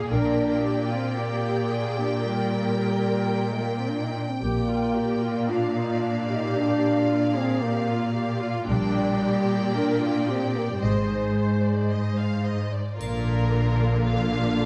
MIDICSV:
0, 0, Header, 1, 8, 480
1, 0, Start_track
1, 0, Tempo, 538600
1, 97, Time_signature, 4, 2, 24, 8
1, 4899, Tempo, 531444
1, 8739, Tempo, 542005
1, 13084, End_track
2, 0, Start_track
2, 0, Title_t, "Violin section"
2, 0, Program_c, 0, 48
2, 101, Note_on_c, 0, 79, 42
2, 102, Note_on_c, 0, 74, 40
2, 3725, Note_off_c, 0, 74, 0
2, 3942, Note_on_c, 0, 74, 35
2, 4900, Note_on_c, 0, 77, 36
2, 4901, Note_off_c, 0, 79, 0
2, 7743, Note_off_c, 0, 74, 0
2, 7772, Note_on_c, 0, 74, 51
2, 7775, Note_on_c, 0, 79, 49
2, 7777, Note_off_c, 0, 77, 0
2, 9659, Note_off_c, 0, 74, 0
2, 9660, Note_off_c, 0, 79, 0
2, 9695, Note_on_c, 0, 75, 31
2, 9697, Note_on_c, 0, 72, 34
2, 10120, Note_off_c, 0, 75, 0
2, 10129, Note_off_c, 0, 72, 0
2, 10170, Note_on_c, 0, 72, 29
2, 10397, Note_off_c, 0, 72, 0
2, 10410, Note_on_c, 0, 74, 29
2, 10655, Note_off_c, 0, 74, 0
2, 10658, Note_on_c, 0, 75, 33
2, 10895, Note_on_c, 0, 77, 32
2, 10900, Note_off_c, 0, 75, 0
2, 11133, Note_on_c, 0, 75, 32
2, 11140, Note_off_c, 0, 77, 0
2, 11378, Note_on_c, 0, 74, 28
2, 11380, Note_off_c, 0, 75, 0
2, 11615, Note_on_c, 0, 65, 40
2, 11618, Note_on_c, 0, 62, 43
2, 11622, Note_off_c, 0, 74, 0
2, 13084, Note_off_c, 0, 62, 0
2, 13084, Note_off_c, 0, 65, 0
2, 13084, End_track
3, 0, Start_track
3, 0, Title_t, "Violin section"
3, 0, Program_c, 1, 48
3, 11614, Note_on_c, 1, 70, 58
3, 12542, Note_off_c, 1, 70, 0
3, 12579, Note_on_c, 1, 77, 62
3, 13084, Note_off_c, 1, 77, 0
3, 13084, End_track
4, 0, Start_track
4, 0, Title_t, "Viola section"
4, 0, Program_c, 2, 48
4, 0, Note_on_c, 2, 68, 47
4, 101, Note_off_c, 2, 68, 0
4, 113, Note_on_c, 2, 70, 50
4, 577, Note_off_c, 2, 70, 0
4, 584, Note_on_c, 2, 67, 44
4, 809, Note_off_c, 2, 67, 0
4, 812, Note_on_c, 2, 65, 39
4, 1046, Note_off_c, 2, 65, 0
4, 1053, Note_on_c, 2, 67, 43
4, 1515, Note_off_c, 2, 67, 0
4, 1518, Note_on_c, 2, 68, 39
4, 1760, Note_off_c, 2, 68, 0
4, 1762, Note_on_c, 2, 67, 37
4, 2003, Note_off_c, 2, 67, 0
4, 2005, Note_on_c, 2, 70, 40
4, 3697, Note_off_c, 2, 70, 0
4, 3947, Note_on_c, 2, 67, 38
4, 4165, Note_off_c, 2, 67, 0
4, 4186, Note_on_c, 2, 65, 31
4, 4421, Note_off_c, 2, 65, 0
4, 4422, Note_on_c, 2, 67, 35
4, 4655, Note_on_c, 2, 65, 34
4, 4661, Note_off_c, 2, 67, 0
4, 4898, Note_off_c, 2, 65, 0
4, 4899, Note_on_c, 2, 62, 32
4, 5135, Note_on_c, 2, 63, 35
4, 5141, Note_off_c, 2, 62, 0
4, 5366, Note_on_c, 2, 62, 37
4, 5378, Note_off_c, 2, 63, 0
4, 5613, Note_off_c, 2, 62, 0
4, 5622, Note_on_c, 2, 67, 45
4, 6338, Note_on_c, 2, 65, 38
4, 6341, Note_off_c, 2, 67, 0
4, 6579, Note_off_c, 2, 65, 0
4, 6581, Note_on_c, 2, 68, 44
4, 6820, Note_off_c, 2, 68, 0
4, 6821, Note_on_c, 2, 67, 41
4, 7060, Note_off_c, 2, 67, 0
4, 7061, Note_on_c, 2, 65, 46
4, 7299, Note_off_c, 2, 65, 0
4, 7299, Note_on_c, 2, 67, 49
4, 7533, Note_off_c, 2, 67, 0
4, 7546, Note_on_c, 2, 65, 48
4, 7781, Note_off_c, 2, 65, 0
4, 7785, Note_on_c, 2, 62, 50
4, 8260, Note_off_c, 2, 62, 0
4, 8265, Note_on_c, 2, 67, 52
4, 8743, Note_off_c, 2, 67, 0
4, 8746, Note_on_c, 2, 70, 50
4, 8980, Note_on_c, 2, 65, 43
4, 8981, Note_off_c, 2, 70, 0
4, 9219, Note_off_c, 2, 65, 0
4, 9228, Note_on_c, 2, 67, 35
4, 9698, Note_on_c, 2, 72, 39
4, 9702, Note_off_c, 2, 67, 0
4, 11351, Note_off_c, 2, 72, 0
4, 11625, Note_on_c, 2, 50, 42
4, 11625, Note_on_c, 2, 58, 41
4, 13084, Note_off_c, 2, 50, 0
4, 13084, Note_off_c, 2, 58, 0
4, 13084, End_track
5, 0, Start_track
5, 0, Title_t, "French horn section"
5, 0, Program_c, 3, 60
5, 104, Note_on_c, 3, 62, 65
5, 774, Note_off_c, 3, 62, 0
5, 826, Note_on_c, 3, 60, 50
5, 1053, Note_off_c, 3, 60, 0
5, 1055, Note_on_c, 3, 58, 53
5, 1767, Note_off_c, 3, 58, 0
5, 1773, Note_on_c, 3, 62, 47
5, 2009, Note_off_c, 3, 62, 0
5, 2009, Note_on_c, 3, 55, 47
5, 3074, Note_off_c, 3, 55, 0
5, 3111, Note_on_c, 3, 56, 40
5, 3222, Note_off_c, 3, 56, 0
5, 3224, Note_on_c, 3, 58, 40
5, 3339, Note_off_c, 3, 58, 0
5, 3355, Note_on_c, 3, 60, 43
5, 3463, Note_off_c, 3, 60, 0
5, 3466, Note_on_c, 3, 62, 45
5, 3581, Note_off_c, 3, 62, 0
5, 3585, Note_on_c, 3, 63, 42
5, 3701, Note_off_c, 3, 63, 0
5, 3701, Note_on_c, 3, 62, 42
5, 3817, Note_off_c, 3, 62, 0
5, 3832, Note_on_c, 3, 60, 41
5, 3945, Note_off_c, 3, 60, 0
5, 3946, Note_on_c, 3, 58, 54
5, 4885, Note_off_c, 3, 58, 0
5, 4901, Note_on_c, 3, 65, 55
5, 5474, Note_off_c, 3, 65, 0
5, 5628, Note_on_c, 3, 63, 52
5, 5859, Note_off_c, 3, 63, 0
5, 5861, Note_on_c, 3, 62, 61
5, 6566, Note_off_c, 3, 62, 0
5, 6585, Note_on_c, 3, 60, 54
5, 6814, Note_on_c, 3, 58, 60
5, 6822, Note_off_c, 3, 60, 0
5, 7534, Note_off_c, 3, 58, 0
5, 7773, Note_on_c, 3, 55, 71
5, 8701, Note_off_c, 3, 55, 0
5, 8736, Note_on_c, 3, 62, 62
5, 9207, Note_off_c, 3, 62, 0
5, 9227, Note_on_c, 3, 60, 53
5, 9460, Note_on_c, 3, 58, 46
5, 9462, Note_off_c, 3, 60, 0
5, 9578, Note_off_c, 3, 58, 0
5, 9587, Note_on_c, 3, 55, 39
5, 9697, Note_on_c, 3, 56, 48
5, 9699, Note_off_c, 3, 55, 0
5, 11385, Note_off_c, 3, 56, 0
5, 11620, Note_on_c, 3, 58, 41
5, 11624, Note_on_c, 3, 62, 43
5, 13084, Note_off_c, 3, 58, 0
5, 13084, Note_off_c, 3, 62, 0
5, 13084, End_track
6, 0, Start_track
6, 0, Title_t, "Cello section"
6, 0, Program_c, 4, 48
6, 105, Note_on_c, 4, 46, 42
6, 3726, Note_off_c, 4, 46, 0
6, 3939, Note_on_c, 4, 46, 35
6, 7742, Note_off_c, 4, 46, 0
6, 7780, Note_on_c, 4, 46, 52
6, 9663, Note_off_c, 4, 46, 0
6, 9695, Note_on_c, 4, 44, 34
6, 11410, Note_off_c, 4, 44, 0
6, 11622, Note_on_c, 4, 46, 42
6, 13084, Note_off_c, 4, 46, 0
6, 13084, End_track
7, 0, Start_track
7, 0, Title_t, "Double bass section"
7, 0, Program_c, 5, 48
7, 101, Note_on_c, 5, 34, 40
7, 538, Note_off_c, 5, 34, 0
7, 3937, Note_on_c, 5, 34, 32
7, 4383, Note_off_c, 5, 34, 0
7, 7777, Note_on_c, 5, 34, 49
7, 8222, Note_off_c, 5, 34, 0
7, 9698, Note_on_c, 5, 32, 31
7, 10145, Note_off_c, 5, 32, 0
7, 11626, Note_on_c, 5, 34, 43
7, 13084, Note_off_c, 5, 34, 0
7, 13084, End_track
8, 0, Start_track
8, 0, Title_t, "Drums"
8, 11625, Note_on_c, 9, 81, 29
8, 11714, Note_off_c, 9, 81, 0
8, 13084, End_track
0, 0, End_of_file